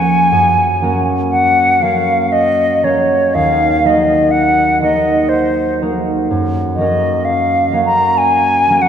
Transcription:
Already playing: D#2 F3 F#3 A#3 C#4 A#4 G#5
0.32 F#2
0.82 F#3 A#3 C#4 A#4
1.31 F#5
1.82 F#3 A#3 C#4 A#4 F5
2.32 D#5
2.83 F#3 A#3 C#4 A#4 C#5
3.34 D#2 F5
3.85 F#3 A#3 D#4 A#4 D#5
4.31 F#5
4.81 F#3 A#3 D#4 A#4 D#5
5.29 C5
5.81 F#3 A#3 D#4 A#4
6.31 F#2
6.75 F#3 D#5
6.80 A#3 C#4 A#4
7.25 F5
7.72 F#3 A#3 C#4 A#4
7.85 A#5
8.18 G#5
8.70 F#3 A#3 C#4 A#4
8.82 F#5

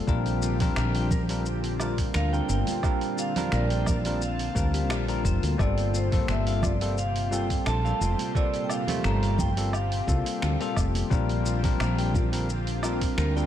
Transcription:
Already playing: A#2 F4
0.07 A#1 D3 G3 C4 D4 F4 G4 A#4, kick, shaker
0.26 open hi-hat, shaker
0.42 F4, shaker
0.60 G3 C4 D4 F4 A#4, kick, open hi-hat, low conga, shaker
0.76 A#1 A#4, finger snap, low woodblock, shaker
0.95 G5, open hi-hat, shaker
1.11 A#4, kick, high conga, low conga, shaker
1.29 G3 C4 D4 F4 A#4, open hi-hat, shaker
1.46 shaker
1.64 open hi-hat, shaker
1.79 G3 C4 D4 F4 A#4, low woodblock, shaker
1.98 kick, open hi-hat, shaker
2.14 D2 A#4 F5, finger snap, shaker
2.32 G3 C4 D4 F4 A#4 G5, shaker
2.49 G1 A#4 G5, shaker
2.67 open hi-hat, high conga, shaker
2.83 G3 C4 D4 F4 A#4 A5, kick, low woodblock, shaker
3.01 open hi-hat, shaker
3.18 F4 F5, shaker
3.36 G3 C4 D4 F4 A#4, open hi-hat, low conga, shaker
3.52 A#1 A#4 D5, finger snap, shaker
3.70 G5, open hi-hat, shaker
3.86 A#4, kick, high conga, low conga, low woodblock, shaker
4.05 G3 C4 D4 F4 A#4, open hi-hat, shaker
4.22 F5, shaker
4.39 open hi-hat, shaker
4.55 D2 G3 C4 D4 F4 A#4, kick, shaker
4.74 G4, open hi-hat, shaker
4.90 A#1 G4, finger snap, low woodblock, shaker
5.08 G3 C4 D4 F4 A#4, open hi-hat, shaker
5.25 F1 C5, kick, shaker
5.43 D2, open hi-hat, high conga, shaker
5.58 G1 C3 G3 A#3 C4 F4 G4 A4 C5 D5, kick, low woodblock, shaker
5.78 open hi-hat, shaker
5.94 F4 C5, shaker
6.12 G3 A#3 C4 F4 A4, kick, open hi-hat, low conga, shaker
6.28 G1 A4 E5, finger snap, shaker
6.47 F5, open hi-hat, shaker
6.62 F4 D5, kick, high conga, low conga, low woodblock, shaker
6.81 G3 A#3 C4 F4 A4, open hi-hat, shaker
6.98 F5, shaker
7.16 open hi-hat, shaker
7.31 G3 A#3 C4 F4 A4 G5, shaker
7.50 kick, open hi-hat, shaker
7.66 A#1 A4 A5, finger snap, low woodblock, shaker
7.84 G3 A#3 C4 F4 A4 F5, shaker
8.01 F1 F4, shaker
8.19 open hi-hat, high conga, shaker
8.35 G3 A#3 C4 F4 A4 D5, kick, shaker
8.54 open hi-hat, shaker
8.64 G5
8.70 F4 F5, low woodblock, shaker
8.87 G3 A3 A#3 C4 F4, open hi-hat, low conga, shaker
9.04 G1 A4 A#5, finger snap, shaker
9.23 F5, open hi-hat, shaker
9.38 F4 G5, kick, high conga, low conga, shaker
9.57 G3 A#3 C4 F4 A4, open hi-hat, shaker
9.73 F5, low woodblock, shaker
9.92 open hi-hat, shaker
10.07 C2 G3 A#3 C4 F4 A4, kick, shaker
10.26 open hi-hat, shaker
10.42 D2 A4, finger snap, shaker
10.60 G3 A#3 C4 F4 A4 F5, open hi-hat, shaker
10.77 F1 F4, kick, low woodblock, shaker
10.95 open hi-hat, high conga, shaker
11.10 A#1 D3 G3 A#3 C4 D4 F4 A#4, kick, shaker
11.29 open hi-hat, shaker
11.46 F4, shaker
11.63 G3 C4 D4 F4 A#4, kick, open hi-hat, low conga, shaker
11.80 A#1 A#4, finger snap, low woodblock, shaker
11.98 G5, open hi-hat, shaker
12.14 F4, kick, high conga, low conga, shaker
12.32 G3 C4 D4 F4 A#4, open hi-hat, shaker
12.49 shaker
12.67 open hi-hat, shaker
12.83 G3 C4 D4 F4 A#4, low woodblock, shaker
13.01 kick, open hi-hat, shaker
13.18 D2 A#4, finger snap, shaker
13.35 G3 C4 D4 F4 A#4 G5, shaker

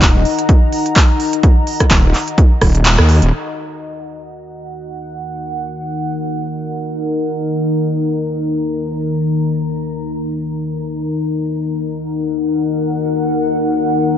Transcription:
Already playing: D#4 D#5 F#5 A#5
0.02 D#1, kick, clap, closed hi-hat
0.25 open hi-hat
0.39 closed hi-hat
0.49 kick, closed hi-hat
0.73 open hi-hat
0.86 closed hi-hat
0.96 kick, clap, closed hi-hat
1.20 open hi-hat
1.33 closed hi-hat
1.43 kick, closed hi-hat
1.67 open hi-hat
1.80 kick, cross-stick, closed hi-hat
1.91 D#1, kick, clap, closed hi-hat
2.14 clap, open hi-hat
2.28 closed hi-hat
2.38 kick, closed hi-hat
2.61 D#1, kick, cross-stick, open hi-hat
2.75 closed hi-hat
2.85 clap, closed hi-hat
2.98 D#2, cross-stick
3.09 open hi-hat
3.22 D#1, closed hi-hat
3.32 D#3 D#4 A#4 F#5
7.10 A#5
10.88 F#5

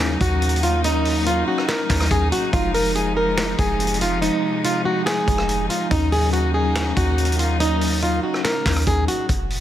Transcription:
Already playing: D#2 C#3 F#3 A#3 C#4 D#4 G#4
0.00 clap
0.21 D#2 F#4, kick, closed hi-hat
0.42 closed hi-hat
0.49 closed hi-hat
0.56 closed hi-hat
0.63 F4, closed hi-hat
0.82 F#3 C#4 D#4, closed hi-hat
1.05 open hi-hat
1.26 F4, closed hi-hat
1.46 F#3 C#4 D#4 F#4
1.58 cross-stick
1.68 A#4, snare, clap, closed hi-hat
1.88 D#2 F#3 C#4 D#4, kick, snare, clap, closed hi-hat
1.95 closed hi-hat
2.00 cross-stick, snare, closed hi-hat
2.06 closed hi-hat
2.11 D#2 G#4, kick, closed hi-hat
2.32 F#4, closed hi-hat
2.52 F1 C3 F3 G#3 D#4 F4, kick, closed hi-hat
2.74 A#4, open hi-hat
2.83 F3 G#3 D#4
2.95 G#4, closed hi-hat
3.17 A#4
3.25 F3 G#3 D#4
3.37 snare, clap, closed hi-hat
3.59 F1 G#4, kick, closed hi-hat
3.80 closed hi-hat
3.87 closed hi-hat
3.94 closed hi-hat
4.01 F4, closed hi-hat
4.20 F3 G#3 D#4, closed hi-hat
4.64 F4, closed hi-hat
4.84 F3 G#3 D#4 F#4
5.06 G#4, snare, clap, closed hi-hat
5.26 F1 F3 G#3 D#4, kick, closed hi-hat
5.38 cross-stick
5.49 closed hi-hat
5.70 F4, closed hi-hat
5.89 D#2 C#3 F#3 A#3 C#4 D#4, kick, closed hi-hat
6.12 G#4, open hi-hat
6.21 F#3 C#4 D#4
6.33 F#4, closed hi-hat
6.54 G#4
6.63 F#3 C#4 D#4
6.75 snare, clap, closed hi-hat
6.97 D#2 F#4, kick, closed hi-hat
7.18 closed hi-hat
7.25 closed hi-hat
7.32 closed hi-hat
7.39 F4, closed hi-hat
7.58 F#3 C#4 D#4, closed hi-hat
7.81 open hi-hat
8.02 F4, closed hi-hat
8.21 F#3 C#4 D#4 F#4
8.34 cross-stick
8.44 A#4, snare, clap, closed hi-hat
8.64 D#2 F#3 C#4 D#4, kick, snare, clap, closed hi-hat
8.71 closed hi-hat
8.76 cross-stick, closed hi-hat
8.82 closed hi-hat
8.87 D#2 G#4, kick, closed hi-hat
9.08 F#4, closed hi-hat
9.29 F1, kick, closed hi-hat
9.50 open hi-hat

